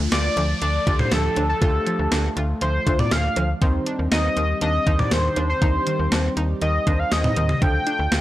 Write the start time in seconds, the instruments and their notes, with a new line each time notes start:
Already playing: analog synth pad F3 A3, analog polysynth A3 D4 F4, downlifter
0.12 fm bass D2, synth arpeggio sound F4, analog synth lead D5, snare, closed hi-hat
0.37 fm bass D2, synth arpeggio sound F3, closed hi-hat
0.62 fm bass D2, synth arpeggio sound D4, analog synth lead D5, closed hi-hat
0.87 fm bass D2, analog polysynth A3 D4 G4, synth arpeggio sound F4, kick, closed hi-hat
0.99 analog synth lead C5, mid tom
1.12 fm bass D2, synth arpeggio sound F3, analog synth lead A4, snare, closed hi-hat
1.36 fm bass D2, synth arpeggio sound D4, closed hi-hat, cowbell
1.49 analog synth lead A4
1.62 fm bass D2, analog polysynth A3 D4 G4, synth arpeggio sound F4, analog synth lead A4, kick, closed hi-hat
1.87 synth arpeggio sound F3, closed hi-hat
1.99 fm bass D2
2.12 fm bass D2, synth arpeggio sound D4, snare, closed hi-hat
2.37 fm bass D2, synth arpeggio sound F4, closed hi-hat
2.61 fm bass D2, synth arpeggio sound F3, analog synth lead C5, closed hi-hat
2.87 fm bass D2, analog polysynth A3 D4 F4, synth arpeggio sound D4, kick, closed hi-hat
2.99 analog synth lead D5, mid tom
3.11 fm bass D2, analog synth lead F5, snare, closed hi-hat
3.36 fm bass D2, synth arpeggio sound F3, closed hi-hat, cowbell
3.62 fm bass D#2, synth arpeggio sound D#3, analog synth pad D#3 G3 C4 G4, analog polysynth C4 D#4 C5, kick, closed hi-hat
3.87 synth arpeggio sound D4, closed hi-hat
3.99 fm bass D#2
4.12 fm bass D#2, synth arpeggio sound D#4, analog synth lead D#5, snare, closed hi-hat
4.37 fm bass D#2, synth arpeggio sound D#3, closed hi-hat
4.61 fm bass D#2, synth arpeggio sound D4, analog synth lead D#5, closed hi-hat
4.87 fm bass D#2, analog polysynth D4 D#4 C5, synth arpeggio sound D#4, kick, closed hi-hat
4.99 analog synth lead D5, mid tom
5.11 fm bass D#2, synth arpeggio sound D#3, analog synth lead C5, snare, closed hi-hat
5.36 fm bass D#2, synth arpeggio sound D4, closed hi-hat, cowbell
5.49 analog synth lead C5
5.62 fm bass D#2, analog polysynth D4 D#4 C5, synth arpeggio sound D#4, analog synth lead C5, kick, closed hi-hat
5.87 synth arpeggio sound D#3, closed hi-hat
5.99 fm bass D#2
6.12 fm bass D#2, synth arpeggio sound D4, snare, closed hi-hat
6.37 fm bass D#2, synth arpeggio sound D#4, closed hi-hat
6.61 fm bass D#2, synth arpeggio sound D#3, analog synth lead D#5, closed hi-hat
6.87 fm bass D#2, analog polysynth C4 D#4 C5, synth arpeggio sound D4, kick, closed hi-hat
6.99 analog synth lead F5
7.12 fm bass D#2, analog synth lead D#5, snare, closed hi-hat
7.24 mid tom
7.36 fm bass D#2, synth arpeggio sound D#3, closed hi-hat
7.49 mid tom
7.62 fm bass D2, synth arpeggio sound F3, analog synth pad A3 F4, analog polysynth D4 F4 A4, analog synth lead G5, kick, closed hi-hat
7.87 synth arpeggio sound D4, closed hi-hat
7.99 fm bass D2
8.12 fm bass D2, synth arpeggio sound F4, snare, closed hi-hat